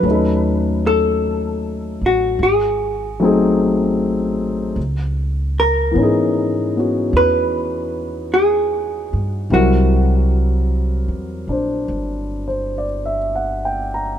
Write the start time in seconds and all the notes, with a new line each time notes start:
Already playing: B4
0.00 D#2 F#3 A3
0.05 C#4 D#4
0.11 A4
0.87 A4
2.01 A1
2.06 F#4
2.39 G#1
2.43 G#4
3.20 F#3 A3 C4 D#4
3.24 G#4
4.76 C#2
5.60 A#4
5.91 E3 B3
5.95 G#2 C#4 D#4
6.03 G#4
6.76 B3 C#4 F#4
7.13 E2 B4
8.34 G#4
9.13 G2
9.50 C2 F#3 G3 C4 E4 F#4 A#4
11.08 E2
11.48 A#1 D4
11.52 C5
11.88 G1
12.48 C5
12.78 D5
13.06 E5
13.36 F#5
13.65 G5
13.94 A#5